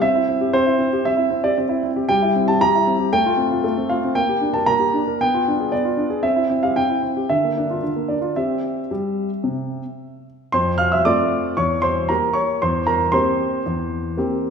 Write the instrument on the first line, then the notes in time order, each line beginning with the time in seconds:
grand piano
0.02 C4 E5
0.15 E4
0.29 C4
0.41 G4
0.53 C4 C5
0.66 E4
0.79 C4
0.93 G4
1.05 C4 E5
1.17 E4
1.30 C4
1.44 G4 D5
1.58 C4
1.69 E4
1.84 C4
1.96 G4
2.09 G3 G5
2.22 E4
2.35 C4
2.48 G4 A5
2.61 G3 A#5
2.75 E4
2.87 C4
3.00 G4
3.13 A3 G5
3.26 F4
3.37 C4
3.51 F4
3.64 A3
3.77 C4
3.90 F4 F5
4.04 C4
4.15 A#3 G5
4.29 G4
4.41 D4
4.54 A#4 A5
4.66 A#3 A#5
4.80 G4
4.94 D4
5.08 A#4
5.21 B3 G5
5.34 F4
5.48 D4
5.60 G#4
5.72 B3 D5
5.85 F4
5.97 D4
6.10 G#4
6.23 C4 E5
6.36 E4
6.50 C4
6.63 G4 F5
6.76 C4 G5
6.89 E4
7.03 C4
7.17 G4
7.29 D3 E5
7.44 A#3
7.58 D4
7.70 F4
7.83 D3
7.96 A#3
8.08 D4 D5
8.21 F4
8.36 C4 G4 E5
8.91 G3
9.44 C3
10.52 F2 C5 C6
10.78 F5 F6
10.92 E5 E6
11.05 A3 C4 F4 D5 D6
11.57 E2 C#5 C#6
11.82 C5 C6
12.09 A#3 G4 A#4 A#5
12.33 C#5 C#6
12.62 E2 C5 C6
12.87 A#4 A#5
13.12 A#3 C4 G4 C5 C6
13.66 E2
14.17 A#3 C4 G4